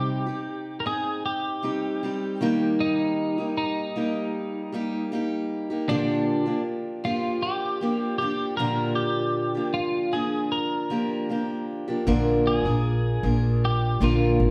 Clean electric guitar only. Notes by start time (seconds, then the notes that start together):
Already playing: G4
0.80 A#4
0.87 G#4
1.26 G4
2.81 D#4
3.58 D#4
5.89 D4
7.05 F4
7.43 G4
8.18 G4
8.57 A#4
8.96 G4
9.74 F4
10.13 G#4
10.52 A#4
12.47 G#4
13.65 G4
14.04 F4